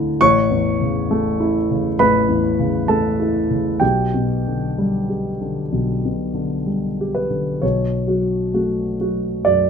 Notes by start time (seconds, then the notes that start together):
Already playing: D2 A2 D3 A3 E4 A4 A5
0.21 A1 C#5 C#6
0.51 E2
0.81 C#3
1.11 A3
1.40 E4
1.71 C#3
1.99 A1 B4 B5
2.29 E2
2.59 C#3
2.88 A3 A4 A5
3.20 E4
3.51 C#3
3.80 B1 G4 G5
4.14 B2
4.47 D3
4.78 G3
5.09 G4
5.41 D3
5.72 B1
6.05 B2
6.34 D3
6.66 G3
7.01 G4
7.15 B4
7.30 D3
7.62 B1 C#5
8.07 F#3 F#4
8.54 A3 F#4
9.00 F#3 F#4
9.45 F#2 D5